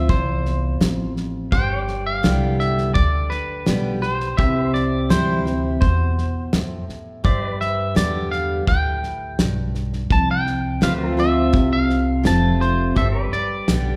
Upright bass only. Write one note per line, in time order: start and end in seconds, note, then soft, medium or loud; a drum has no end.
0.09 0.79 C2 medium
0.81 1.50 A1 loud
1.52 2.22 G1 medium
2.24 2.93 C2 loud
2.96 3.65 D2 medium
3.67 4.36 B1 medium
4.38 5.08 C2 medium
5.10 5.79 D2 loud
5.82 6.51 E2 medium
6.53 6.86 F2 medium
6.89 muted upright bass stroke soft
7.25 7.94 G2 medium
7.96 8.65 E2 medium
8.67 9.37 D2 medium
9.39 10.08 B1 medium
10.11 10.80 C2 medium
10.82 11.51 D2 loud
11.54 12.23 C2 medium
12.26 12.95 F1 medium
12.97 13.30 G1 medium
13.33 muted upright bass stroke soft
13.68 13.96 B1 loud